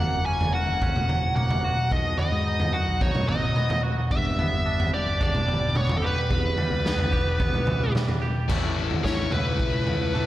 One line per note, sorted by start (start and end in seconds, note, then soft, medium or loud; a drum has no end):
0.00 1.10 F#2 medium
0.00 1.35 A#3 medium
0.00 0.25 F#5 medium
0.00 floor tom medium
0.13 0.55 F#1 medium
0.26 0.81 C#4 medium
0.26 0.52 G#5 medium
0.41 floor tom medium
0.54 0.66 E1 medium
0.54 1.63 F#4 medium
0.54 1.35 F#5 loud
0.68 0.91 F#1 medium
0.82 1.92 C#4 medium
0.82 kick loud
0.82 floor tom medium
0.96 1.75 F#1 medium
0.96 mid tom medium
1.09 1.91 F#3 medium
1.09 floor tom medium
1.36 1.91 A#3 medium
1.36 1.93 F#5 medium
1.36 mid tom medium
1.51 floor tom medium
1.51 mid tom medium
1.64 1.92 F#4 medium
1.91 2.14 B1 medium
1.91 3.29 B2 medium
1.91 2.17 D#5 medium
1.91 kick loud
1.91 floor tom medium
2.19 3.56 B3 medium
2.19 2.75 D#5 medium
2.19 floor tom medium
2.32 2.74 G#2 medium
2.47 3.00 D#4 medium
2.60 floor tom medium
2.73 2.85 F#2 medium
2.73 3.82 F#4 medium
2.73 3.01 F#5 medium
2.88 3.10 B1 medium
3.01 4.11 D#4 medium
3.01 3.28 C#5 medium
3.01 kick loud
3.01 floor tom medium
3.15 3.26 F#2 medium
3.15 mid tom medium
3.28 3.51 G#1 medium
3.28 4.11 F#3 medium
3.28 3.80 D#5 medium
3.28 floor tom medium
3.56 4.38 B3 medium
3.56 mid tom medium
3.70 floor tom medium
3.70 mid tom medium
3.83 4.11 F#4 medium
4.11 4.45 G1 medium
4.11 5.48 G2 medium
4.11 4.89 E5 loud
4.11 kick loud
4.11 floor tom medium
4.39 5.74 B3 medium
4.39 floor tom medium
4.52 4.94 G1 medium
4.66 5.19 D4 medium
4.80 floor tom medium
4.93 5.05 E1 medium
4.93 6.01 G4 medium
4.93 5.22 D5 medium
5.07 5.29 G1 medium
5.20 6.30 D4 medium
5.20 5.76 D5 loud
5.20 kick loud
5.20 floor tom medium
5.34 6.14 G1 medium
5.34 mid tom medium
5.48 6.30 G3 medium
5.48 floor tom medium
5.75 6.30 B3 medium
5.75 5.95 C#5 medium
5.75 mid tom medium
5.89 floor tom medium
5.89 mid tom medium
5.97 6.03 A4 medium
6.02 6.30 G4 medium
6.06 7.92 B4 medium
6.30 6.53 E1 medium
6.30 7.67 E2 medium
6.30 kick loud
6.30 floor tom medium
6.58 7.94 G3 medium
6.58 floor tom medium
6.71 7.13 C#2 medium
6.85 7.39 B3 medium
6.85 snare medium
6.99 floor tom medium
7.12 7.24 B1 medium
7.12 8.20 G4 medium
7.12 kick medium
7.26 7.48 E1 medium
7.40 8.50 B3 medium
7.40 kick loud
7.40 floor tom medium
7.53 7.64 B1 medium
7.53 mid tom medium
7.67 7.90 C#2 medium
7.67 8.48 E3 medium
7.67 floor tom medium
7.67 mid tom medium
7.95 8.49 G3 medium
7.95 snare medium
7.95 mid tom medium
8.09 floor tom medium
8.22 8.49 G4 medium
8.48 8.95 A1 loud
8.48 8.75 A2 medium
8.48 8.76 E3 medium
8.48 8.75 E3 medium
8.48 8.76 A3 medium
8.48 8.76 A3 loud
8.48 8.76 C#4 medium
8.48 8.76 E4 medium
8.48 kick loud
8.48 floor tom medium
8.48 crash loud
8.76 9.02 A2 medium
8.76 9.01 A2 medium
8.76 9.03 E3 medium
8.76 9.01 E3 medium
8.76 9.03 A3 medium
8.76 9.03 C#4 medium
8.76 9.04 E4 medium
8.91 floor tom medium
9.03 9.27 A1 medium
9.03 9.30 A2 medium
9.03 9.29 A2 medium
9.03 9.31 E3 medium
9.03 9.29 E3 medium
9.03 9.31 A3 medium
9.03 9.31 C#4 medium
9.03 9.33 E4 medium
9.03 9.33 C#5 medium
9.03 kick medium
9.03 snare medium
9.31 10.21 C#2 medium
9.31 9.56 A2 medium
9.31 9.57 A2 medium
9.31 9.56 E3 medium
9.31 9.57 E3 medium
9.31 9.57 A3 medium
9.31 9.58 C#4 medium
9.31 9.59 E4 medium
9.31 10.26 B4 medium
9.31 floor tom medium
9.31 mid tom medium
9.58 9.84 A2 medium
9.58 9.85 E3 medium
9.58 9.84 E3 medium
9.58 9.85 A3 loud
9.58 9.85 C#4 loud
9.58 9.85 E4 medium
9.58 kick loud
9.85 10.11 A2 medium
9.85 10.12 E3 medium
9.85 10.11 E3 medium
9.85 10.12 A3 medium
9.85 10.13 C#4 medium
9.85 10.13 E4 medium
9.85 floor tom medium
10.12 10.26 A2 medium
10.12 10.26 E3 medium
10.12 10.26 A3 medium
10.12 10.26 C#4 medium
10.12 10.26 E4 medium
10.12 mid tom medium